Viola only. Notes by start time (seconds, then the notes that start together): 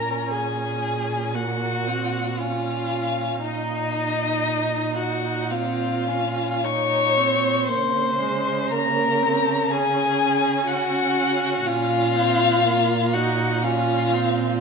Already playing: C#4
1.34 A#3
1.87 C4
2.40 C#4
3.44 D#4
3.95 D#4
5.51 C4
6.08 C#4
6.64 D#4
7.17 C4
7.68 A#3
8.20 G#3
8.71 A#3
9.22 C4
9.71 C#4
11.67 C#4
12.16 C4
12.65 A#3
13.14 D#4
13.64 C#4
14.12 C4